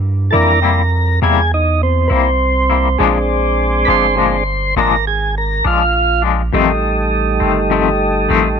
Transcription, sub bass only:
Already playing: G2
0.34 F2
1.22 E2
2.10 C2
3.00 A#1
3.88 G1
4.76 G#1
5.65 A#1
6.54 A1
7.41 G1
8.30 A1

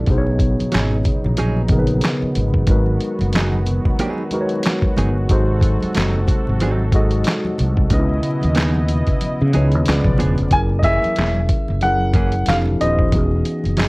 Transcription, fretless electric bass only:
0.08 B1
0.61 muted fretless electric bass stroke
0.74 G#1
1.26 A#1
2.23 muted fretless electric bass stroke
2.37 G#1
2.69 G#1
3.21 F#1
4.99 G1
5.31 G#1
5.84 muted fretless electric bass stroke
5.97 F#1
6.49 G#1
7.60 C2
7.91 C#2
8.44 D#2
9.41 C#3
9.56 C#2
9.75 D#2
9.88 C#2
10.05 B1
10.21 E1
10.40 F1
10.52 F#1
11.05 muted fretless electric bass stroke
11.18 E1
11.70 F#1
12.48 F1
12.81 D#1
13.13 E1
13.65 F#1

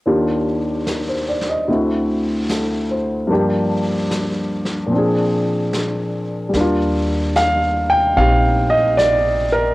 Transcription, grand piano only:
0.06 D#2 D#3 D4 F4 G4
0.88 A#4
1.09 C5
1.29 D5
1.50 D#5
1.68 D2 D3 C4 E4
1.72 F#4
2.52 A4
2.91 C5
3.27 G2 F3 A#3 D4
3.33 G4
4.87 A#2 F3
4.92 C4 D4
4.98 G#4
6.49 G3 A#3
6.56 D4
6.61 F4
7.36 F5
7.90 G5
8.17 C4 D#4 G4 F5
8.70 D#5
8.97 D5
9.52 A#4

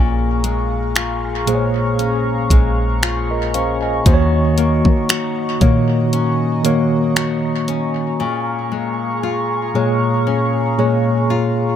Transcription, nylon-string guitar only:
Already playing: A#2 A#3 C#4
0.44 G#3
0.96 F4
1.47 G#3
1.99 C#4
2.51 G#3
3.03 F4
3.54 C#4
4.06 D#3
4.58 A#3
5.10 F#4
5.61 A#3
6.13 C#4
6.65 A#3
7.16 F#4
7.68 C#4
8.20 A#2
8.72 G#3
9.23 F4
9.75 G#3
10.27 C#4
10.79 G#3
11.30 F4

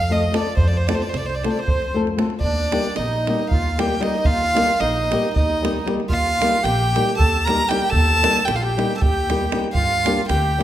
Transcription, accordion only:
0.11 D#5
0.34 D5
0.57 C5
0.67 D5
0.77 C5
0.87 D5
0.95 C5
1.02 D5
1.10 C5
1.17 D5
1.28 C5
1.36 D5
1.45 C5
1.54 D5
1.61 C5
2.43 D4
2.98 D#4
3.52 F4
3.80 G4
4.03 D#4
4.25 F4
4.81 D#4
5.36 D#4
6.08 F4
6.63 G4
7.17 A4
7.45 A#4
7.68 G4
7.90 A4
8.46 G4
8.56 F4
8.62 G4
8.96 A4
9.01 G4
9.75 F4
10.30 G4

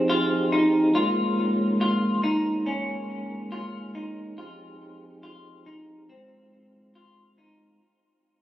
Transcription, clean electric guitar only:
0.10 F4
0.52 D#4
0.95 F4
1.81 F4
2.23 D#4
2.66 C#4
3.52 F4
3.95 D#4
4.38 F4
5.23 F4
5.66 D#4
6.09 C4
6.95 F4
7.38 D#4

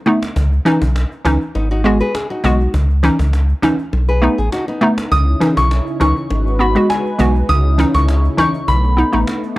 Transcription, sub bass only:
0.36 C#2
0.82 B1
1.25 C#2
1.55 G#1
2.44 B1
2.74 C#2
3.19 C#2
3.93 B1
4.38 A1
5.12 C#2
5.57 B1
6.01 C#2
6.30 G#1
7.19 B1
7.49 C#2
7.95 C#2
8.68 B1
9.13 A1

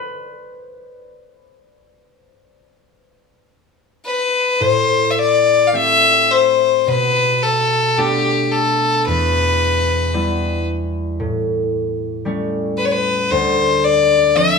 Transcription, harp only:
Already playing: B4
4.60 A2
5.73 A3 C4 G4
6.87 B2
7.97 A3 B3 D4
9.07 E2
10.14 G3 B3 E4
11.20 A2
12.25 G3 A3 C#4
13.31 D2
14.35 F3 C4 D4

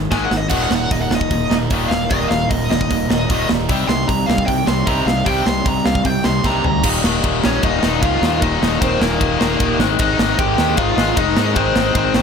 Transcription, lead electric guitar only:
0.12 G#5
0.24 F#5
0.37 D#5
0.49 F#5
0.63 F#5
0.76 F#5
0.92 D#5
1.02 F#5
1.15 D#5
1.89 F5
2.10 D#5
2.29 F5
2.49 D#5
2.70 D#5
3.89 C6
4.08 A#5
4.26 F5
4.46 G5
4.67 C6
4.87 A#5
5.06 F5
5.26 G5
5.46 C6
5.67 A#5
5.86 F5
6.06 G5
6.25 C6
6.46 A#5
6.66 A#5
7.44 C#4 C#5
7.63 D#4 D#5
8.01 F4 F5
8.42 D#4 D#5
8.81 C4 C5
9.00 A#3 A#4
10.00 D#4 D#5
10.19 D#4 D#5
10.38 G4 G5
10.77 F4 F5
11.17 D#4 D#5
11.56 C4 C5
11.95 C4 C5

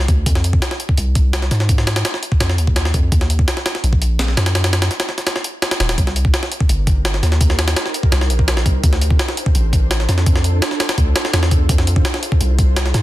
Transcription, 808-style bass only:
0.08 D2
0.26 F2
0.98 C2
1.51 G#2
2.41 F2
2.58 D#2
2.94 F2
3.12 D#2
3.84 A#1
4.37 F#2
5.80 D#1
5.98 C2
6.69 G1
7.23 D#2
8.12 C2
8.30 A#1
8.66 C2
8.83 D2
9.55 A1
10.09 F2
10.98 D2
11.33 E2
11.69 F2
12.41 C2
12.94 G#2

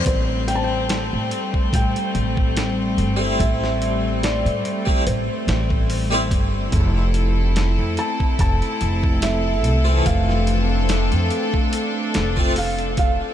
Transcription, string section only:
Already playing: C4
0.06 G3 A3
6.73 A3 C4 E4 A4
10.06 D4

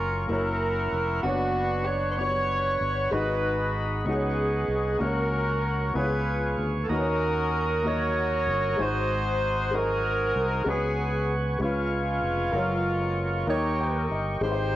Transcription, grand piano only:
Already playing: F#3 A#3 F4 C#5
0.28 A#3 E4 F#4 C#5
1.23 B3 D4 F#4 C#5
2.18 B3 D4 F#4 C#5
3.11 G#2 G#3 D#4 F#4 B4
4.04 B3 C#4 D#4 F#4
4.09 B4
4.15 C#5
4.99 C#3 A#3 C#4 F#4 C#5
5.94 C#3 B3 E4 G#4 C#5
6.01 F4
6.88 D#3 A#3 D#4 F#4
6.93 B4
6.99 C#5
7.82 A#3 D#4 F#4
7.87 D#5
8.77 G#2 G#3 D#4 F#4
8.81 C5
9.71 G#3 D#4 F#4
9.75 C5
10.64 C#3 G#3 C#4 F#4 B4
11.58 C#3 G#3 C#4 F4
11.63 B4
12.52 F#3 F4 A#4 C#5
13.47 D#3 D#4 G4 A#4 C#5
13.81 G5
14.11 D#5
14.41 G#2 G#3 D#4 G4
14.45 B4
14.52 C5

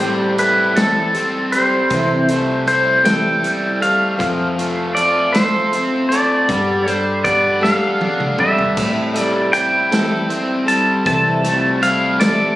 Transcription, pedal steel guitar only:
Already playing: C5
0.39 B4
0.76 A4
1.52 C5
2.68 C5
3.05 G5
3.82 F5
4.95 D5
5.33 C5
6.09 D5
6.91 C5
7.24 D5
7.63 F5
8.40 E5
9.21 D5
9.53 G5
10.68 A5
11.07 A5
11.83 F5
12.20 D5

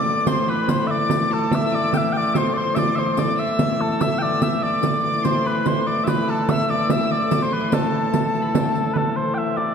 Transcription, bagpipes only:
Already playing: D5
0.28 C5
0.49 B4
0.69 C5
0.87 D5 E5
1.33 A4
1.55 E5
1.75 D5
1.94 E5 G5
2.13 G5
2.17 D5
2.34 C5 E5
2.54 C5 D5
2.75 D5 E5
2.95 C5 E5
3.19 D5
3.39 E5
3.81 A4
4.01 E5
4.19 D5 G5
4.42 E5
4.63 D5
5.25 C5
5.46 B4
5.67 C5
5.87 D5
6.04 B4 E5
6.30 A4
6.49 E5
6.70 D5
6.91 E5
7.12 D5
7.43 C5
7.52 B4
7.74 A4
8.93 A4 B4
9.16 C5
9.34 E5 G5
9.57 D5

